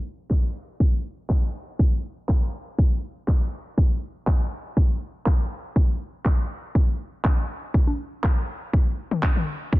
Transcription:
0.30 kick medium
0.30 clap loud
0.80 kick loud
1.30 kick loud
1.30 clap loud
1.79 kick loud
2.29 kick loud
2.29 clap loud
2.78 kick loud
3.28 kick loud
3.28 clap loud
3.78 kick loud
4.27 kick loud
4.27 clap loud
4.77 kick loud
5.26 kick loud
5.26 clap loud
5.76 kick loud
6.25 kick loud
6.25 clap loud
6.75 kick loud
7.25 kick loud
7.25 clap loud
7.25 high conga medium
7.74 kick loud
7.87 high conga medium
8.24 kick loud
8.24 clap loud
8.73 kick loud
9.11 mid tom medium
9.23 kick loud
9.23 clap loud
9.23 high conga medium
9.36 mid tom medium
9.73 kick loud

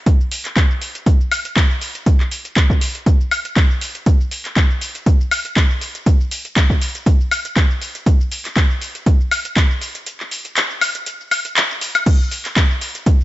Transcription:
0.06 kick loud
0.06 closed hi-hat medium
0.06 shaker soft
0.21 shaker soft
0.31 open hi-hat loud
0.31 shaker medium
0.45 clap soft
0.45 closed hi-hat medium
0.45 shaker soft
0.56 kick loud
0.56 clap loud
0.56 closed hi-hat medium
0.56 shaker soft
0.71 shaker soft
0.82 open hi-hat loud
0.82 shaker medium
0.95 closed hi-hat medium
0.95 shaker soft
1.06 kick loud
1.06 closed hi-hat medium
1.06 shaker soft
1.21 shaker soft
1.32 open hi-hat loud
1.32 high woodblock medium
1.32 shaker medium
1.45 closed hi-hat medium
1.45 shaker soft
1.56 kick loud
1.56 clap loud
1.56 closed hi-hat medium
1.56 shaker soft
1.71 shaker soft
1.81 open hi-hat loud
1.81 shaker medium
1.95 closed hi-hat medium
1.95 shaker soft
2.06 kick loud
2.06 closed hi-hat medium
2.06 shaker soft
2.20 clap soft
2.20 shaker soft
2.31 open hi-hat loud
2.31 shaker medium
2.45 closed hi-hat soft
2.45 shaker soft
2.56 kick loud
2.56 clap loud
2.56 closed hi-hat medium
2.56 shaker soft
2.70 kick medium
2.70 shaker soft
2.81 open hi-hat loud
2.81 shaker medium
2.95 closed hi-hat soft
2.95 shaker soft
3.06 kick loud
3.06 closed hi-hat medium
3.06 shaker soft
3.21 shaker soft
3.31 open hi-hat loud
3.31 high woodblock medium
3.31 shaker medium
3.45 closed hi-hat soft
3.45 shaker soft
3.56 kick loud
3.56 clap loud
3.56 closed hi-hat medium
3.56 shaker soft
3.71 shaker soft
3.81 open hi-hat loud
3.81 shaker medium
3.95 closed hi-hat soft
3.95 shaker soft
4.06 kick loud
4.06 closed hi-hat medium
4.06 shaker soft
4.21 shaker soft
4.31 open hi-hat loud
4.31 shaker medium
4.45 clap soft
4.45 closed hi-hat soft
4.45 shaker soft
4.56 kick loud
4.56 clap loud
4.56 closed hi-hat medium
4.56 shaker soft
4.71 shaker soft
4.81 open hi-hat loud
4.81 shaker medium
4.95 closed hi-hat medium
4.95 shaker soft
5.06 kick loud
5.06 closed hi-hat medium
5.06 shaker soft
5.21 shaker soft
5.31 open hi-hat loud
5.31 high woodblock medium
5.31 shaker medium
5.45 closed hi-hat soft
5.45 shaker soft
5.56 kick loud
5.56 clap loud
5.56 closed hi-hat medium
5.56 shaker soft
5.71 shaker soft
5.81 open hi-hat loud
5.81 shaker medium
5.95 closed hi-hat medium
5.95 shaker soft
6.06 kick loud
6.06 closed hi-hat medium
6.06 shaker soft
6.21 shaker soft
6.31 open hi-hat loud
6.31 shaker medium
6.45 closed hi-hat medium
6.45 shaker soft
6.56 kick loud
6.56 clap loud
6.56 closed hi-hat medium
6.56 shaker soft
6.70 kick medium
6.70 shaker soft
6.81 open hi-hat loud
6.81 shaker medium
6.95 closed hi-hat medium
6.95 shaker soft
7.06 kick loud
7.06 closed hi-hat medium
7.06 shaker soft
7.21 shaker soft
7.31 open hi-hat loud
7.31 high woodblock medium
7.31 shaker medium
7.45 closed hi-hat medium
7.45 shaker soft
7.56 kick loud
7.56 clap loud
7.56 closed hi-hat medium
7.56 shaker soft
7.71 shaker soft
7.82 open hi-hat loud
7.82 shaker medium
7.95 closed hi-hat medium
7.95 shaker soft
8.06 kick loud
8.06 closed hi-hat medium
8.06 shaker soft
8.21 shaker soft
8.32 open hi-hat loud
8.32 shaker medium
8.45 clap soft
8.45 closed hi-hat medium
8.45 shaker soft
8.56 kick loud
8.56 clap loud
8.56 closed hi-hat medium
8.56 shaker soft
8.71 shaker soft
8.81 open hi-hat loud
8.81 shaker medium
8.95 closed hi-hat medium
8.95 shaker soft
9.06 kick loud
9.06 closed hi-hat medium
9.06 shaker soft
9.21 shaker soft
9.31 open hi-hat loud
9.31 high woodblock medium
9.31 shaker medium
9.45 closed hi-hat medium
9.45 shaker soft
9.56 kick loud
9.56 clap loud
9.56 closed hi-hat medium
9.56 shaker soft
9.71 shaker soft
9.81 open hi-hat loud
9.81 shaker medium
9.95 closed hi-hat medium
9.95 shaker soft
10.06 closed hi-hat medium
10.06 shaker soft
10.20 clap soft
10.20 shaker soft
10.31 open hi-hat loud
10.31 shaker medium
10.45 closed hi-hat medium
10.45 shaker soft
10.56 clap loud
10.56 closed hi-hat medium
10.56 shaker soft
10.71 shaker soft
10.81 open hi-hat loud
10.81 high woodblock medium
10.81 shaker medium
10.95 closed hi-hat medium
10.95 shaker soft
11.06 closed hi-hat medium
11.06 shaker soft
11.21 shaker soft
11.31 open hi-hat loud
11.31 high woodblock medium
11.31 shaker medium
11.45 closed hi-hat medium
11.45 shaker soft
11.56 clap loud
11.56 closed hi-hat medium
11.56 shaker soft
11.71 shaker soft
11.81 open hi-hat loud
11.81 shaker medium
11.95 closed hi-hat medium
11.95 high woodblock medium
11.95 shaker soft
12.06 kick loud
12.06 closed hi-hat medium
12.06 crash medium
12.06 shaker soft
12.21 shaker soft
12.31 open hi-hat loud
12.31 shaker medium
12.45 clap soft
12.45 closed hi-hat medium
12.45 shaker soft
12.56 kick loud
12.56 clap loud
12.56 closed hi-hat medium
12.56 shaker soft
12.71 shaker soft
12.81 open hi-hat loud
12.81 shaker medium
12.95 closed hi-hat medium
12.95 shaker soft
13.06 kick loud
13.06 closed hi-hat medium
13.06 shaker soft
13.21 shaker soft

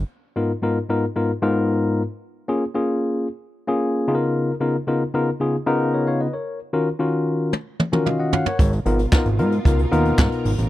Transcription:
0.36 0.51 G#2 medium
0.36 0.51 B3 medium
0.36 0.51 D#4 medium
0.36 0.51 F4 medium
0.36 0.51 A#4 medium
0.62 0.77 G#2 medium
0.62 0.77 B3 medium
0.62 0.78 D#4 medium
0.62 0.78 F4 medium
0.62 0.78 A#4 loud
0.89 1.04 G#2 medium
0.89 1.04 B3 medium
0.89 1.04 D#4 medium
0.89 1.04 F4 medium
0.89 1.05 A#4 loud
1.16 1.31 G#2 medium
1.16 1.31 B3 medium
1.16 1.31 D#4 medium
1.16 1.31 F4 medium
1.16 1.31 A#4 loud
1.42 2.01 G#2 loud
1.42 2.02 B3 loud
1.42 2.02 D#4 loud
1.42 2.02 F4 loud
1.42 2.02 A#4 loud
2.48 2.63 A#3 loud
2.48 2.63 C#4 medium
2.48 2.63 F4 medium
2.48 2.64 G#4 loud
2.74 3.27 A#3 medium
2.74 3.27 C#4 medium
2.74 3.27 F4 medium
2.74 3.27 G#4 medium
3.68 4.08 A#3 medium
3.68 4.08 C#4 medium
3.68 4.07 F4 medium
3.68 4.07 G#4 loud
4.08 4.50 C#3 medium
4.08 4.50 B3 medium
4.08 4.50 D#4 medium
4.08 4.50 F4 medium
4.08 4.14 G#4 medium
4.15 4.54 A#4 loud
4.60 4.75 C#3 medium
4.60 4.76 B3 medium
4.60 4.76 D#4 medium
4.60 4.76 F4 medium
4.60 4.76 A#4 medium
4.87 5.02 C#3 medium
4.87 5.02 B3 medium
4.87 5.02 D#4 medium
4.87 5.03 F4 medium
4.87 5.03 A#4 medium
5.14 5.29 C#3 medium
5.14 5.29 B3 medium
5.14 5.29 D#4 medium
5.14 5.29 F4 medium
5.14 5.29 A#4 loud
5.40 5.55 C#3 medium
5.40 5.55 B3 medium
5.40 5.55 D#4 medium
5.40 5.56 F4 medium
5.40 5.56 G#4 medium
5.66 6.26 C#3 loud
5.66 6.26 B3 loud
5.66 6.26 D#4 loud
5.66 6.26 F4 medium
5.66 5.93 A#4 loud
5.94 6.07 A#4 medium
5.94 6.06 C#5 medium
6.07 6.20 C#5 medium
6.07 6.20 F5 medium
6.21 6.33 B4 medium
6.21 6.33 D#5 medium
6.33 6.59 A#4 medium
6.33 6.59 C#5 medium
6.73 6.88 D#3 medium
6.73 6.88 C#4 medium
6.73 6.88 F4 medium
6.73 6.88 F#4 medium
6.73 6.88 A#4 loud
6.99 7.51 D#3 medium
6.99 7.51 C#4 medium
6.99 7.52 F4 medium
6.99 7.52 F#4 medium
6.99 7.52 A#4 medium
7.53 high tom medium
7.80 mid tom medium
7.92 8.44 D#3 medium
7.92 8.45 C#4 medium
7.92 8.45 F4 medium
7.92 8.45 F#4 medium
7.92 8.06 A#4 loud
7.92 mid tom medium
8.06 8.19 D#5 medium
8.06 8.31 F5 medium
8.06 mid tom medium
8.20 8.32 D#5 medium
8.20 8.32 F#5 medium
8.33 8.45 C#5 medium
8.33 8.45 F5 medium
8.33 8.57 F#5 medium
8.33 floor tom loud
8.46 8.72 A#4 medium
8.46 8.71 C#5 medium
8.46 floor tom loud
8.59 8.80 G#1 loud
8.59 10.69 B2 medium
8.59 10.69 F4 loud
8.59 10.69 A#4 medium
8.59 kick loud
8.59 closed hi-hat loud
8.72 closed hi-hat medium
8.86 9.07 G#1 loud
8.86 9.00 B3 medium
8.86 9.01 D#4 medium
8.86 9.01 F4 medium
8.86 9.01 A#4 medium
8.86 closed hi-hat medium
8.99 closed hi-hat medium
9.12 9.27 B3 loud
9.12 9.27 D#4 medium
9.12 9.27 F4 medium
9.12 9.27 A#4 loud
9.12 kick loud
9.12 snare loud
9.12 clap medium
9.25 9.40 G#1 loud
9.25 closed hi-hat soft
9.39 9.60 G#2 loud
9.39 9.54 B3 medium
9.39 9.54 D#4 medium
9.39 9.54 F4 medium
9.39 9.54 A#4 loud
9.39 closed hi-hat medium
9.52 closed hi-hat medium
9.65 9.86 C#2 loud
9.65 9.80 B3 medium
9.65 9.80 D#4 medium
9.65 9.80 F4 medium
9.65 9.80 A#4 medium
9.65 kick loud
9.65 closed hi-hat loud
9.79 closed hi-hat medium
9.92 10.13 D#2 loud
9.92 10.51 B3 loud
9.92 10.51 D#4 medium
9.92 10.51 F4 loud
9.92 10.51 A#4 loud
9.92 closed hi-hat medium
10.05 closed hi-hat medium
10.18 10.29 G#2 medium
10.18 kick loud
10.18 snare loud
10.18 clap medium
10.32 closed hi-hat medium
10.45 10.55 G#1 loud
10.45 open hi-hat loud
10.58 10.69 A1 medium
10.58 closed hi-hat medium

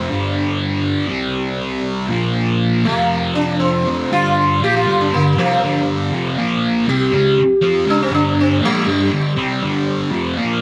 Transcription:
0.08 1.08 G2 medium
0.08 1.07 D3 medium
0.08 1.08 G3 medium
1.08 2.08 C3 medium
1.08 2.09 G3 medium
1.08 2.10 C4 medium
2.08 2.83 A#2 medium
2.08 2.84 F3 medium
2.08 2.85 A#3 medium
2.85 3.84 F2 medium
2.85 3.85 C3 medium
2.85 3.84 F3 medium
2.85 3.35 A#3 medium
3.35 3.59 D4 medium
3.60 3.95 C4 medium
3.85 4.11 F2 medium
3.85 4.10 C3 medium
3.85 4.09 F3 medium
4.12 4.61 G2 medium
4.12 4.61 D3 medium
4.12 4.62 G3 medium
4.12 4.61 F4 medium
4.62 4.86 A#2 medium
4.62 4.86 F3 medium
4.62 4.87 A#3 medium
4.62 4.74 G4 medium
4.76 5.00 F4 medium
4.86 5.11 G2 medium
4.86 5.11 D3 medium
4.86 5.11 G3 medium
5.01 5.12 D4 medium
5.14 5.33 G2 medium
5.14 5.33 D3 medium
5.14 5.37 A#3 medium
5.36 5.61 C3 medium
5.36 5.84 F3 medium
5.36 5.61 G3 medium
5.36 5.87 A#3 medium
5.36 5.61 C4 medium
5.62 6.11 G2 medium
5.62 6.12 D3 medium
5.62 6.12 G3 medium
6.12 6.36 F2 medium
6.12 6.37 C3 medium
6.12 6.37 F3 medium
6.38 6.87 A#2 medium
6.38 6.87 F3 medium
6.38 6.87 A#3 medium
6.87 7.11 C3 medium
6.87 7.12 G3 medium
6.87 7.12 C4 medium
6.87 7.85 G4 medium
7.12 7.37 C#3 medium
7.12 7.37 G#3 medium
7.12 7.38 C#4 medium
7.38 muted distorted electric guitar stroke medium
7.61 7.86 F3 medium
7.61 7.86 C4 medium
7.61 7.87 F4 loud
7.86 8.11 C#3 medium
7.86 8.11 G#3 medium
7.86 8.11 C#4 medium
7.86 8.00 D4 medium
8.02 8.13 C4 medium
8.10 8.61 G2 medium
8.10 8.61 D3 medium
8.10 8.62 G3 loud
8.14 8.38 D4 medium
8.41 8.63 C4 medium
8.62 8.86 A#2 medium
8.62 8.87 F3 medium
8.62 10.10 G3 medium
8.62 8.87 A#3 medium
8.87 9.11 G2 medium
8.87 9.11 D3 medium
8.87 9.12 G3 medium
9.12 9.32 G2 medium
9.12 9.33 D3 medium
9.36 9.61 C3 medium
9.36 9.62 G3 medium
9.36 9.62 C4 loud
9.62 10.11 G2 medium
9.62 10.12 D3 medium
9.62 10.12 G3 medium
10.12 10.36 F2 medium
10.12 10.36 C3 medium
10.12 10.36 F3 loud
10.36 10.61 A#2 medium
10.36 10.61 F3 medium
10.36 10.61 A#3 medium

